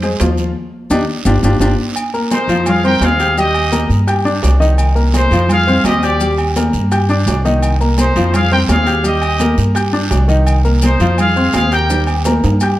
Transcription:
Already playing: upright bass F2
0.02 grand piano G#3 G#4 C5, high conga, high timbale, maracas
0.20 upright bass D#2, grand piano F3 F4 F5, high conga, high timbale, low timbale, short guiro, maracas
0.38 high conga, short guiro, maracas
0.90 upright bass D#2, grand piano D4 D#4 G4, high conga, high timbale, long guiro, maracas
1.25 upright bass G1, grand piano D4 F4 G4, high conga, high timbale, long guiro, maracas
1.43 upright bass G1, grand piano D4 F4 G4, high conga, high timbale, long guiro, maracas
1.60 upright bass G1, grand piano D4 F4 G4, high conga, high timbale, long guiro, maracas
1.96 high conga, low agogo, long guiro, maracas
2.14 grand piano A#3 A#4 A#5, high conga, maracas
2.31 trumpet section D#4 C5, high conga, low timbale, low agogo, short guiro, maracas
2.48 upright bass F2, grand piano F3 F4 F5, high conga, low agogo, short guiro, maracas
2.66 trumpet section G#4 F5, high conga, low conga, low agogo, long guiro, maracas
2.84 grand piano C4 C5 C6, trumpet section A#4 G5, high conga, low conga, maracas
3.01 upright bass D#2, trumpet section G#4 F5, high conga, low timbale, low agogo, short guiro, maracas
3.19 grand piano G4 G5 G6, high conga, low agogo, short guiro, maracas
3.37 grand piano G3 G4 G5, trumpet section G4 D#5, high conga, long guiro, maracas
3.54 high conga, low agogo, maracas
3.72 grand piano A#3 A#4 A#5, high conga, low timbale, low agogo, short guiro, maracas
3.89 upright bass G2, high conga, short guiro, maracas
4.07 grand piano G4 G5 G6, high conga, low agogo, long guiro, maracas
4.25 grand piano D4 D5 D6, high conga, maracas
4.43 upright bass C2, high conga, low timbale, low agogo, short guiro, maracas
4.60 grand piano D#3 D#4 D#5, short guiro, maracas
4.78 high conga, low agogo, long guiro, maracas
4.95 grand piano A#3 A#4 A#5, high conga, maracas
5.14 trumpet section D#4 C5, high conga, low timbale, low agogo, short guiro, maracas
5.31 upright bass F2, grand piano F3 F4 F5, high conga, low agogo, short guiro, maracas
5.49 trumpet section G#4 F5, high conga, low conga, low agogo, long guiro, maracas
5.67 grand piano C4 C5 C6, high conga, low conga, maracas
5.84 upright bass D#2, trumpet section G4 D#5, high conga, low timbale, low agogo, short guiro, maracas
6.03 grand piano G4 G5 G6, trumpet section G4 D5, low agogo, short guiro, maracas
6.20 grand piano G3 G4 G5, high conga, long guiro, maracas
6.38 high conga, low agogo, maracas
6.56 grand piano A#3 A#4 A#5, high conga, low timbale, low agogo, short guiro, maracas
6.73 upright bass G2, high conga, short guiro, maracas
6.92 grand piano G4 G5 G6, high conga, low agogo, long guiro, maracas
7.09 grand piano D4 D5 D6, high conga, maracas
7.26 upright bass C2, high conga, low timbale, low agogo, short guiro, maracas
7.45 grand piano D#3 D#4 D#5, high conga, short guiro, maracas
7.63 high conga, low agogo, long guiro, maracas
7.81 grand piano A#3 A#4 A#5, high conga, maracas
7.98 trumpet section D#4 C5, high conga, low timbale, low agogo, short guiro, maracas
8.16 upright bass F2, grand piano F3 F4 F5, high conga, low agogo, short guiro, maracas
8.34 trumpet section G#4 F5, high conga, low conga, low agogo, long guiro, maracas
8.52 grand piano C4 C5 C6, trumpet section A#4 G5, high conga, low conga, maracas
8.69 upright bass D#2, trumpet section G#4 F5, high conga, low timbale, low agogo, short guiro, maracas
8.86 grand piano G4 G5 G6, low agogo, short guiro, maracas
9.03 grand piano G3 G4 G5, trumpet section G4 D#5, high conga, long guiro, maracas
9.22 high conga, low agogo, maracas
9.39 grand piano A#3 A#4 A#5, high conga, low timbale, low agogo, short guiro, maracas
9.58 upright bass G2, high conga, short guiro, maracas
9.75 grand piano G4 G5 G6, high conga, low agogo, long guiro, maracas
9.93 grand piano D4 D5 D6, high conga, maracas
10.11 upright bass C2, high conga, low timbale, low agogo, short guiro, maracas
10.28 grand piano D#3 D#4 D#5, short guiro, maracas
10.46 high conga, low agogo, long guiro, maracas
10.65 grand piano A#3 A#4 A#5, high conga, maracas
10.82 trumpet section D#4 C5, high conga, low timbale, low agogo, short guiro, maracas
11.00 upright bass F2, grand piano F3 F4 F5, high conga, low agogo, short guiro, maracas
11.18 trumpet section G#4 F5, high conga, low conga, low agogo, long guiro, maracas
11.36 grand piano C4 C5 C6, high conga, maracas
11.53 upright bass D#2, trumpet section G#4 F5, high conga, low timbale, low agogo, short guiro, maracas
11.71 grand piano G4 G5 G6, trumpet section A#4 G5, low agogo, short guiro, maracas
11.90 grand piano G3 G4 G5, high conga, high timbale, long guiro, maracas
12.07 high conga, low agogo, maracas
12.25 grand piano A#3 A#4 A#5, high conga, low timbale, low agogo, short guiro, maracas
12.44 upright bass G2, high conga, high timbale, short guiro, maracas
12.60 grand piano G4 G5 G6, low agogo, long guiro, maracas

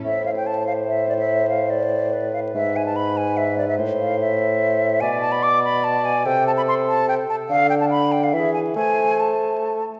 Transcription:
0.05 bassoon A2, clarinet C5, flute E5
0.26 flute F5
0.36 flute G5
0.46 flute A5
0.67 flute F5
0.88 flute E5
1.09 flute D5
1.19 flute E5
1.49 flute F5
1.70 flute D5
2.13 clarinet B4
2.33 flute F5
2.54 bassoon G#2, flute E5
2.76 flute G#5
2.86 flute A5
2.96 flute B5
3.17 flute G#5
3.37 flute E5
3.58 flute D5
3.68 flute E5
3.79 bassoon A2, clarinet C5
4.00 flute F5
4.20 flute E5
5.01 bassoon B2, clarinet D5, flute G#5
5.21 flute A5
5.32 flute B5
5.43 flute D6
5.64 flute B5
5.84 flute A5
6.05 flute G#5
6.25 bassoon C3, clarinet A4, flute G5
6.47 flute A5
6.57 flute B5
6.68 flute C6
6.88 flute A5
7.09 flute G5
7.30 flute A5
7.49 bassoon D3, flute F5
7.70 flute G5
7.81 flute A5
7.91 flute B5
8.12 flute G5
8.23 flute F5
8.33 bassoon E3, clarinet G#4, flute E5
8.54 flute G#5
8.75 bassoon A3, clarinet C5, flute G#5
9.20 flute A5

